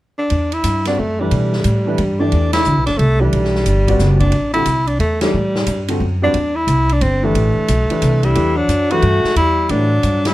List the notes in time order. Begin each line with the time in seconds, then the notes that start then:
0.18 D4
0.30 E2, ride
0.52 E4, ride
0.64 G2, hi-hat pedal, ride
0.85 G3 C4 D4 F#4 B4 D5, snare, ride
0.99 F#2 A3
1.20 E3 G3 A3 D4 G4 B4
1.31 B2, ride
1.53 snare
1.64 A2, hi-hat pedal, ride
1.86 E3 A3 D4 G4 B4
1.98 G2, ride
2.20 E3 A3 D4 G4 D5
2.32 E2, ride
2.53 E4, snare, ride
2.64 D2, hi-hat pedal
2.77 B1
2.86 G1 D4, snare, ride
2.98 C2 A3, ride
3.20 E3 G3 A3 D4 G4 B4
3.33 B1, ride
3.45 snare
3.55 snare
3.66 G1, hi-hat pedal, ride
3.88 G3 C4 F#4 B4 D5, kick, ride
3.99 F#1, snare, hi-hat pedal
4.20 D4, kick, ride
4.32 A1, ride
4.54 D3 G3 C4 E4 F#4 A4, ride
4.66 C2, hi-hat pedal, ride
4.87 D4, ride
4.99 E2 A3, ride
5.21 E3 G3 A3 D4 G4 A4, snare, ride
5.34 A2
5.55 snare
5.67 G2, hi-hat pedal, ride
5.88 D3 G3 C4 F#4 A4, ride
6.00 F#2
6.22 G3 C4 D4 F#4 B4 D5
6.34 E2, ride
6.55 E4
6.67 C2, hi-hat pedal, ride
6.89 D4, ride
7.01 G1 C4, ride
7.23 E3 A3 D4 G4 B4
7.34 A1, ride
7.68 B1, hi-hat pedal, ride
7.90 E3 A3 D4 G4 B4, muted upright bass stroke, ride
8.02 C2, hi-hat pedal, ride
8.23 G3 E4, ride
8.34 E2 E3 A3 D4 G4 B4, ride
8.57 F#3 D4
8.68 F#2, hi-hat pedal, ride
8.91 E3 A3 D4 F#4 G4 B4, ride
9.02 G2, ride
9.24 muted upright bass stroke, snare
9.36 E2 G3 E4, ride
9.69 A2 E3 F#3 A3 D4 G4 B4, ride
10.03 G2, hi-hat pedal, ride
10.25 G3 E4, snare, ride